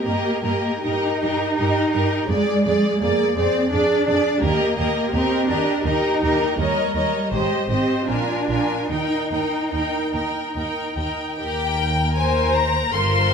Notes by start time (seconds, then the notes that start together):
0.03 G2 A#3 G4 A#4 D#5
0.43 G2 G4 A#4 D#5
0.84 G2 D#4 G4 A#4 D#5
1.22 G2 G4 A#4 D#5
1.58 G2 G4 A#4 D#5
1.92 G2 G4 A#4 D#5
2.29 F2 G#3 G#4 D5
2.64 F2 G#4 D5
3.01 F2 A#3 G#4 D5
3.37 F2 C4 G#4 D5
3.71 F2 D4 G#4 D5
4.07 F2 G#4 D5
4.42 D#2 A#3 G4 A#4 D#5
4.78 D#2 G4 A#4 D#5
5.13 D#2 C4 G4 A#4 D#5
5.48 D#2 D4 G4 A#4 D#5
5.85 D#2 D#4 G4 A#4 D#5
6.22 D#2 G4 A#4 D#5
6.59 D#2 G3 A#4 C#5 D#5
6.95 D#2 A#4 C#5 D#5
7.32 G#1 G#3 G4 C5 D#5
7.69 G#1 C4 G4 C5 D#5
8.08 A#1 D4 F4 A#4 G#5
8.48 A#1 F4 A#4 G#5
8.90 D#2 D#4 A#4 G5
9.31 D#2 D#4 A#4 G5
9.73 D#2 D#4 A#4 G5
10.14 D#2 D#4 A#4 G5
10.55 D#2 D#4 A#4 G5
10.97 D#2 D#4 A#4 G5
11.38 D#2 G4 A#4 G5
11.79 A#4
12.16 C5 G#5
12.55 A#5
12.92 G1 G2 F4 A#4 C5 C6